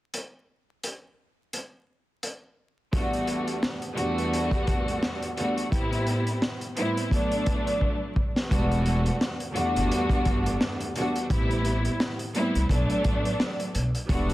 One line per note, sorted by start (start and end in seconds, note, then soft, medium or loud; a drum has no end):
0.14 closed hi-hat medium
0.83 closed hi-hat medium
1.53 closed hi-hat medium
2.23 closed hi-hat medium
2.92 3.74 E2 medium
2.92 3.74 G3 medium
2.92 3.74 A3 medium
2.92 3.75 B3 medium
2.92 3.75 D4 medium
2.92 3.75 F#4 loud
2.92 kick loud
2.92 closed hi-hat medium
3.13 closed hi-hat soft
3.27 closed hi-hat medium
3.48 closed hi-hat soft
3.63 snare loud
3.82 closed hi-hat medium
3.95 5.26 E2 loud
3.95 5.26 G3 medium
3.95 5.26 A3 medium
3.95 5.26 B3 medium
3.95 5.27 D4 medium
3.95 5.27 F#4 loud
3.95 closed hi-hat medium
4.18 closed hi-hat soft
4.33 closed hi-hat medium
4.51 kick medium
4.51 closed hi-hat soft
4.67 kick medium
4.67 closed hi-hat medium
4.88 closed hi-hat medium
5.03 snare loud
5.22 closed hi-hat medium
5.37 5.69 E2 medium
5.37 5.69 G3 medium
5.37 5.70 A3 medium
5.37 5.70 B3 medium
5.37 5.70 D4 medium
5.37 5.70 F#4 medium
5.37 closed hi-hat medium
5.58 closed hi-hat medium
5.70 6.52 A2 loud
5.70 6.53 G3 medium
5.70 6.53 B3 medium
5.70 6.53 C4 medium
5.70 6.54 E4 loud
5.70 kick loud
5.70 closed hi-hat medium
5.92 closed hi-hat soft
6.07 closed hi-hat medium
6.27 closed hi-hat soft
6.42 snare loud
6.61 closed hi-hat medium
6.77 7.11 A2 loud
6.77 7.12 G3 medium
6.77 7.12 B3 medium
6.77 7.12 C4 medium
6.77 7.13 E4 loud
6.77 closed hi-hat medium
6.97 closed hi-hat soft
7.11 8.25 F#3 medium
7.11 8.25 A3 medium
7.11 8.26 B3 medium
7.11 8.26 D4 loud
7.11 kick medium
7.11 closed hi-hat medium
7.32 closed hi-hat soft
7.46 kick loud
7.46 closed hi-hat medium
7.67 closed hi-hat medium
7.81 kick medium
8.16 kick medium
8.36 snare medium
8.50 9.08 E1 loud
8.50 9.32 E2 loud
8.50 9.32 G3 medium
8.50 9.33 A3 medium
8.50 9.33 B3 medium
8.50 9.33 D4 medium
8.50 9.33 F#4 loud
8.50 kick loud
8.50 closed hi-hat medium
8.72 closed hi-hat soft
8.86 closed hi-hat medium
9.06 closed hi-hat soft
9.21 snare loud
9.40 closed hi-hat medium
9.53 10.84 E2 loud
9.53 10.84 G3 medium
9.53 10.84 A3 medium
9.53 10.85 B3 medium
9.53 10.85 D4 medium
9.53 10.85 F#4 loud
9.53 closed hi-hat medium
9.76 9.88 G1 medium
9.76 closed hi-hat medium
9.91 closed hi-hat medium
10.09 muted upright bass stroke soft
10.09 kick medium
10.09 closed hi-hat soft
10.25 10.54 G1 medium
10.25 kick medium
10.25 closed hi-hat medium
10.46 closed hi-hat medium
10.61 snare loud
10.81 closed hi-hat medium
10.95 11.28 E2 medium
10.95 11.27 G3 medium
10.95 11.28 A3 medium
10.95 11.28 B3 medium
10.95 11.28 D4 medium
10.95 11.29 F#4 medium
10.95 closed hi-hat medium
11.16 closed hi-hat medium
11.28 11.87 A1 loud
11.28 12.11 A2 loud
11.28 12.11 G3 medium
11.28 12.11 B3 medium
11.28 12.11 C4 medium
11.28 12.12 E4 loud
11.28 kick loud
11.28 closed hi-hat medium
11.51 closed hi-hat soft
11.65 closed hi-hat medium
11.85 closed hi-hat soft
12.00 snare loud
12.19 closed hi-hat medium
12.35 12.70 A2 loud
12.35 12.70 G3 medium
12.35 12.70 B3 medium
12.35 12.70 C4 medium
12.35 12.71 E4 loud
12.35 closed hi-hat medium
12.55 12.67 C2 medium
12.55 closed hi-hat medium
12.69 12.86 B1 loud
12.69 13.83 F#3 medium
12.69 13.83 A3 medium
12.69 13.84 B3 medium
12.69 13.84 D4 loud
12.69 kick medium
12.69 closed hi-hat medium
12.90 closed hi-hat soft
13.04 13.33 A1 medium
13.04 kick loud
13.04 closed hi-hat medium
13.25 closed hi-hat medium
13.40 snare loud
13.60 closed hi-hat medium
13.75 13.90 B1 medium
13.75 closed hi-hat medium
13.95 closed hi-hat soft
14.08 14.34 E1 loud
14.08 14.34 E2 loud
14.08 14.34 G3 medium
14.08 14.34 A3 medium
14.08 14.34 B3 medium
14.08 14.34 D4 loud
14.08 14.34 F#4 loud
14.08 kick loud
14.08 closed hi-hat medium
14.30 closed hi-hat soft